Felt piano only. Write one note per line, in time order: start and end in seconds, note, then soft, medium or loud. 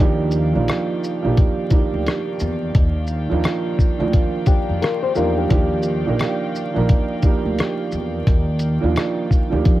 0.00 0.34 F3 loud
0.00 0.34 A#3 medium
0.00 0.34 D4 loud
0.00 0.35 D#4 loud
0.00 0.35 G4 loud
0.53 0.98 F3 medium
0.53 0.98 A#3 medium
0.53 0.99 D4 medium
0.53 0.99 D#4 medium
0.53 0.99 F4 medium
1.23 1.58 F3 medium
1.23 1.59 A#3 medium
1.23 1.59 D4 medium
1.23 1.59 D#4 medium
1.23 1.60 G4 medium
1.70 2.67 F3 medium
1.70 2.67 A#3 medium
1.70 2.67 D4 medium
1.70 2.68 D#4 medium
1.70 2.68 G4 medium
3.30 3.74 F3 medium
3.30 3.75 A#3 medium
3.30 3.75 D4 medium
3.30 3.75 D#4 medium
3.30 3.76 F4 medium
3.99 4.79 D#3 medium
3.99 4.78 F3 medium
3.99 4.79 A#3 medium
3.99 4.79 D4 medium
3.99 4.80 F4 loud
5.15 5.42 F3 medium
5.15 5.42 A#3 medium
5.15 5.42 D4 medium
5.15 5.43 D#4 medium
5.15 5.43 G4 medium
5.49 5.86 D#3 medium
5.49 5.85 F3 loud
5.49 5.86 A#3 medium
5.49 5.86 D4 medium
5.49 5.87 G4 loud
6.06 6.51 D#3 medium
6.06 6.50 F3 medium
6.06 6.51 A#3 medium
6.06 6.51 D4 medium
6.06 6.52 A#4 medium
6.74 7.10 F3 medium
6.74 7.10 A#3 medium
6.74 7.10 D4 medium
6.74 7.11 D#4 medium
6.74 7.11 A#4 medium
7.22 8.19 F3 medium
7.22 8.19 A#3 medium
7.22 8.19 D4 medium
7.22 8.20 D#4 medium
7.22 8.20 G4 medium
8.81 9.25 F3 medium
8.81 9.26 A#3 medium
8.81 9.26 D4 medium
8.81 9.27 D#4 medium
8.81 9.27 F4 loud
9.50 9.80 D#3 medium
9.50 9.80 F3 medium
9.50 9.80 A#3 medium
9.50 9.80 D4 medium
9.50 9.80 G4 medium